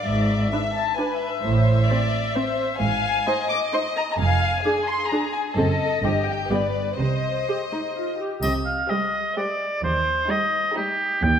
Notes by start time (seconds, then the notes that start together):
Already playing: D5
0.05 G#1 G#2 E5
0.52 D4 B4 E5
0.75 A5
0.96 D4 B4 G#5
1.19 E5
1.42 A1 A2 C5
1.87 C4 C5 D5
2.36 C4 C5
2.80 G#1 G#2 F5 G#5
3.27 D#4 C5 D#5
3.49 D6
3.73 D#4 C5 C6
3.96 A#5
4.11 A#5
4.18 F1 F2 F5 G#5
4.64 D4 G#4
4.87 C6
5.09 D4 G#4 A#5
5.33 G#5
5.55 F#1 F#2 C4 A4 D#5
6.03 G1 G2 C4 G4
6.28 G5
6.51 G1 G2 B3 G4 B4 D5
6.98 C2 C3 C5 D#5
7.48 G4
7.72 D#4
7.95 F4
8.19 G4
8.42 C2 C3 D#5, triangle
8.65 F5
8.89 G3 G4 C5 D#5
9.36 G3 G4 C5 D5
9.82 D#2 C5
10.29 G3 D#4 G4 D#5
10.76 G3 D#4 G4
11.22 D#2 G5